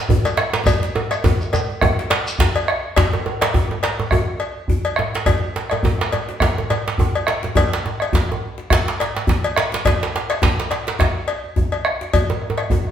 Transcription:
0.09 bombo rim, bombo low, djembe tone, djembe bass
0.25 cowbell, djembe slap, djembe tone, shekere
0.37 bombo rim, djembe slap
0.53 djembe slap
0.66 bombo low, cowbell, djembe slap, djembe tone, djembe bass, shekere
0.83 djembe slap
0.95 bombo rim, djembe slap, djembe tone
1.11 bombo rim, cowbell, shekere
1.24 bombo rim, bombo low, djembe tone, djembe bass, shekere
1.41 bombo rim, djembe slap, shekere
1.53 bombo rim, cowbell, djembe tone, shekere
1.70 djembe slap
1.81 bombo rim, bombo low, djembe slap, djembe tone, djembe bass
1.97 bombo rim, djembe slap
2.10 cowbell, djembe slap
2.27 shekere
2.39 bombo rim, bombo low, djembe slap, djembe tone, djembe bass
2.56 bombo rim, cowbell, djembe slap
2.68 bombo rim
2.96 bombo low, cowbell, djembe slap, djembe tone, djembe bass
3.13 djembe slap, djembe tone
3.25 bombo rim, djembe tone
3.41 bombo rim, cowbell, djembe slap
3.54 bombo rim, bombo low, djembe tone, djembe bass
3.70 bombo rim, djembe slap, djembe tone
3.83 cowbell, djembe slap
4.00 djembe tone
4.11 bombo rim, bombo low, djembe tone, djembe bass
4.27 bombo rim
4.40 bombo rim, cowbell, djembe slap
4.68 bombo low, djembe tone, djembe bass
4.85 cowbell, djembe slap
4.96 bombo rim, djembe tone
5.15 djembe slap
5.26 bombo low, cowbell, djembe slap, djembe tone, djembe bass
5.43 djembe slap
5.56 djembe slap
5.70 bombo rim, cowbell, djembe tone
5.83 bombo rim, bombo low, djembe tone, djembe bass
5.99 bombo rim, djembe slap
6.12 cowbell, djembe tone
6.29 djembe slap
6.40 bombo rim, bombo low, djembe slap, djembe tone, djembe bass
6.56 bombo rim, djembe tone
6.69 bombo rim, cowbell, djembe slap, djembe tone
6.88 djembe slap
6.98 bombo low, djembe tone, djembe bass
7.15 cowbell, djembe slap
7.27 bombo rim, djembe slap
7.43 djembe slap, djembe tone
7.55 bombo low, cowbell, djembe slap, djembe tone, djembe bass
7.57 djembe tone
7.72 djembe slap
7.73 djembe slap
7.84 bombo rim, djembe tone
8.00 bombo rim, cowbell
8.13 bombo rim, bombo low, djembe slap, djembe tone, djembe bass
8.29 bombo rim, djembe tone
8.58 djembe slap
8.70 bombo rim, bombo low, djembe slap, djembe tone, djembe bass
8.87 bombo rim, djembe slap
8.99 bombo rim, cowbell, djembe slap
9.01 djembe slap
9.16 djembe slap
9.27 bombo low, djembe slap, djembe tone, djembe bass
9.44 cowbell
9.56 bombo rim, djembe slap
9.72 djembe slap
9.74 djembe slap
9.85 bombo low, cowbell, djembe slap, djembe tone, djembe bass
9.87 djembe slap
10.02 djembe slap
10.14 bombo rim, djembe slap
10.16 djembe slap
10.30 bombo rim, cowbell, djembe slap
10.42 bombo low, djembe slap, djembe tone, djembe bass
10.59 bombo rim, djembe slap
10.71 cowbell, djembe slap
10.87 djembe slap
10.99 bombo rim, bombo low, djembe slap, djembe tone, djembe bass
11.28 cowbell
11.44 djembe slap
11.56 bombo rim, bombo low, djembe slap, djembe tone, djembe bass
11.72 bombo rim, cowbell
11.85 bombo rim, djembe slap
12.01 djembe slap
12.13 bombo low, cowbell, djembe slap, djembe tone, djembe bass
12.29 djembe slap, djembe tone
12.42 bombo rim
12.50 djembe tone
12.58 bombo rim, cowbell
12.70 bombo rim, bombo low, djembe tone, djembe bass
12.87 bombo rim

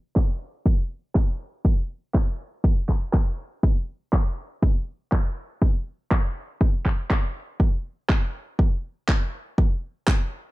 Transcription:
0.16 kick, clap
0.66 kick
1.15 kick, clap
1.65 kick
2.14 kick, clap
2.64 kick
2.89 kick, clap
3.13 kick, clap
3.63 kick
4.13 kick, clap
4.62 kick
5.12 kick, clap
5.62 kick
6.11 kick, clap
6.61 kick
6.86 kick, clap
7.10 kick, clap
7.60 kick
8.09 kick, clap
8.59 kick
9.09 kick, clap
9.58 kick
10.08 kick, clap

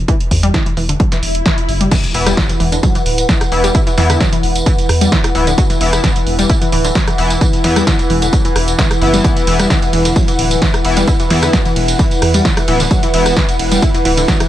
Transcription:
0.08 E3, kick, closed hi-hat
0.20 closed hi-hat
0.31 E2, kick, open hi-hat
0.43 G3, closed hi-hat
0.54 E4, kick, snare, closed hi-hat
0.66 E3, closed hi-hat
0.77 E1 E3, open hi-hat
0.89 D3, closed hi-hat
1.00 F#3, kick, closed hi-hat, swell
1.12 E3, snare, closed hi-hat
1.23 E1, open hi-hat
1.35 closed hi-hat
1.46 E3, kick, snare, closed hi-hat
1.58 closed hi-hat
1.69 F#1, open hi-hat
1.81 G3, closed hi-hat
1.91 E3 E4, kick, closed hi-hat, crash, tambourine, impact
2.04 closed hi-hat, tambourine
2.14 E1 E3 B3 E4, open hi-hat
2.26 G3, cross-stick, closed hi-hat, tambourine
2.36 E4 F#5, kick, snare, closed hi-hat, tambourine
2.46 E3 B4, closed hi-hat, tambourine
2.60 E1 E3, open hi-hat
2.72 D3, closed hi-hat, tambourine
2.83 F#3, kick, closed hi-hat, tambourine
2.95 E3, closed hi-hat, tambourine
3.06 D1, open hi-hat
3.18 closed hi-hat, tambourine
3.29 E3, kick, snare, closed hi-hat, tambourine
3.41 cross-stick, closed hi-hat, tambourine
3.52 E1 E3 B3 E4, open hi-hat
3.64 G3, closed hi-hat, tambourine
3.75 E4, kick, closed hi-hat, tambourine
3.87 E3, closed hi-hat, tambourine
3.98 E2 E3 B3 E4, snare, open hi-hat
4.10 D3, cross-stick, closed hi-hat, tambourine
4.20 F#3, kick, snare, closed hi-hat, tambourine
4.33 E3, closed hi-hat, tambourine
4.43 E1, open hi-hat
4.55 closed hi-hat, tambourine
4.66 E3, kick, closed hi-hat, tambourine
4.78 closed hi-hat, tambourine
4.89 E2, cross-stick, open hi-hat
5.01 G3, closed hi-hat, tambourine
5.12 E4, kick, snare, closed hi-hat, tambourine
5.24 E3, cross-stick, closed hi-hat, tambourine
5.35 D1 E3 B3 E4, open hi-hat
5.47 D3, closed hi-hat, tambourine
5.58 F#3, kick, closed hi-hat, tambourine
5.70 E3, closed hi-hat, tambourine
5.81 E1 E3 B3 E4, open hi-hat
5.93 cross-stick, closed hi-hat, tambourine
6.04 E3, kick, snare, closed hi-hat, tambourine
6.16 closed hi-hat, tambourine
6.27 E1, open hi-hat
6.39 G3, closed hi-hat, tambourine
6.49 E4, kick, closed hi-hat, tambourine
6.62 E3, closed hi-hat, tambourine
6.72 D1 E3, open hi-hat
6.84 D3, closed hi-hat, tambourine
6.95 F#3, kick, snare, closed hi-hat
7.07 E3, cross-stick, closed hi-hat, tambourine
7.18 E1 E3 B3 E4, open hi-hat
7.30 closed hi-hat, tambourine
7.41 E3, kick, closed hi-hat, tambourine
7.53 closed hi-hat, tambourine
7.64 E2 E3 B3 E4, snare, open hi-hat
7.76 G3, cross-stick, closed hi-hat, tambourine
7.87 E4, kick, snare, closed hi-hat, tambourine
7.99 E3, closed hi-hat, tambourine
8.10 E1 E3, open hi-hat
8.22 D3, closed hi-hat, tambourine
8.33 F#3, kick, closed hi-hat, tambourine
8.45 E3, closed hi-hat, tambourine
8.56 E1, cross-stick, open hi-hat
8.68 closed hi-hat, tambourine
8.79 E3, kick, snare, closed hi-hat, tambourine
8.91 cross-stick, closed hi-hat, tambourine
9.01 F#1 E3 B3 E4, open hi-hat
9.14 G3, closed hi-hat, tambourine
9.24 E3, kick, closed hi-hat, tambourine
9.37 closed hi-hat, tambourine
9.47 E1 E3 B3 E4, open hi-hat, ride
9.59 G3, cross-stick, closed hi-hat, tambourine
9.70 E4, kick, snare, closed hi-hat, tambourine
9.82 E3, closed hi-hat, tambourine
9.93 E1 E3, open hi-hat, ride
10.05 D3, closed hi-hat, tambourine
10.16 F#3, kick, closed hi-hat, tambourine
10.28 E3, closed hi-hat, tambourine
10.39 D1, open hi-hat, ride
10.51 closed hi-hat, tambourine
10.62 E3, kick, snare, closed hi-hat, tambourine
10.74 cross-stick, closed hi-hat, tambourine
10.85 E1 E3 B3 E4, open hi-hat, ride
10.97 G3, closed hi-hat, tambourine
11.07 E4, kick, closed hi-hat, tambourine
11.20 E3, closed hi-hat, tambourine
11.30 E2 E3 B3 E4, snare, open hi-hat, ride
11.43 D3, cross-stick, closed hi-hat, tambourine
11.53 F#3, kick, snare, closed hi-hat, tambourine
11.65 E3, closed hi-hat, tambourine
11.76 E1, open hi-hat, ride
11.88 closed hi-hat, tambourine
11.99 E3, kick, closed hi-hat, tambourine
12.11 closed hi-hat, tambourine
12.22 E2, cross-stick, open hi-hat, ride
12.34 G3, closed hi-hat, tambourine
12.45 E4, kick, snare, closed hi-hat, tambourine
12.57 E3, cross-stick, closed hi-hat, tambourine
12.68 D1 E3 B3 E4, open hi-hat, ride
12.80 D3, closed hi-hat, tambourine
12.91 F#3, kick, closed hi-hat, tambourine
13.03 E3, closed hi-hat, tambourine
13.14 E1 E3 B3 E4, open hi-hat, ride
13.26 cross-stick, closed hi-hat, tambourine
13.37 E3, kick, snare, closed hi-hat
13.49 closed hi-hat, tambourine
13.59 E1, open hi-hat, ride
13.71 G3, closed hi-hat, tambourine
13.82 E4, kick, closed hi-hat, tambourine
13.94 E3, closed hi-hat, tambourine
14.05 D1 E3, open hi-hat, ride
14.17 D3, closed hi-hat, tambourine
14.28 F#3, kick, snare, closed hi-hat, tambourine
14.40 E3, cross-stick, closed hi-hat, tambourine

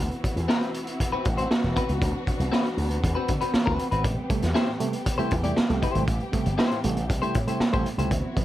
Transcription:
Already playing: B3 C4 E4 F#4
0.11 closed hi-hat
0.24 kick, closed hi-hat
0.36 E2, closed hi-hat
0.48 C4 F#4 B4, snare
0.62 closed hi-hat
0.74 closed hi-hat
0.87 closed hi-hat
1.00 kick, closed hi-hat
1.12 C4 F#4 B4, muted slap bass stroke
1.25 A1, kick, closed hi-hat
1.37 C4 F#4 C5, closed hi-hat
1.51 snare
1.64 E1
1.76 C4 F#4 B4, kick, closed hi-hat
1.89 C#2, closed hi-hat
2.02 D2 D4, kick, closed hi-hat
2.27 kick, closed hi-hat
2.40 C2, closed hi-hat
2.52 C4 F#4 B4, snare
2.66 closed hi-hat
2.77 D2, open hi-hat
2.90 closed hi-hat
3.04 E2, kick, closed hi-hat
3.15 C4 F#4 B4
3.28 D3, kick, closed hi-hat
3.41 C4 F#4 B4, closed hi-hat
3.54 muted slap bass stroke, snare
3.66 D2 C4 F#4 B4, kick
3.79 closed hi-hat
3.91 G#1 C4 F#4 B4, closed hi-hat
4.04 A1 A2 G4, kick, closed hi-hat
4.17 G3 A3
4.29 C3 G3 A3, kick, closed hi-hat
4.42 E2, snare, closed hi-hat
4.54 G3 A3 E4 G4 C5, snare
4.67 A2
4.80 C3 G3 A3, closed hi-hat
4.93 closed hi-hat
5.06 kick, closed hi-hat
5.18 C3 G3 A3 E4 G4 C5, muted slap bass stroke, closed hi-hat
5.31 E2 A2, kick, closed hi-hat
5.44 C3 G3 A3 E4 G4 D5, closed hi-hat
5.56 muted slap bass stroke, snare
5.69 C2 C3 G3 A3, closed hi-hat
5.82 A2 E4 G4 C5, kick, closed hi-hat
5.95 G#1 C3 G3 A3, closed hi-hat
6.08 A1 A2, kick, closed hi-hat
6.20 G3 A3, closed hi-hat
6.32 C3 G3 A3, kick, closed hi-hat
6.46 G1, closed hi-hat
6.58 G3 A3 E4 G4 C5, snare
6.71 A2, closed hi-hat
6.84 A1 C3 G3 A3, closed hi-hat
6.97 closed hi-hat
7.10 C2, kick, closed hi-hat
7.22 C3 G3 A3 E4 G4 C5, closed hi-hat
7.34 A2, kick, closed hi-hat
7.47 C3 G3 A3 E4 G4 C5, closed hi-hat
7.60 muted slap bass stroke, snare
7.72 A1 C3 G3 A3 E4 G4 C5, kick, closed hi-hat
7.86 A2, closed hi-hat
7.98 C#2 C3 G3 A3 E4 G4 C5, closed hi-hat
8.11 D2 B3 C4 E4 F#4, kick, closed hi-hat
8.24 F#3 B3
8.36 C3 E3 F#3 B3, kick, closed hi-hat

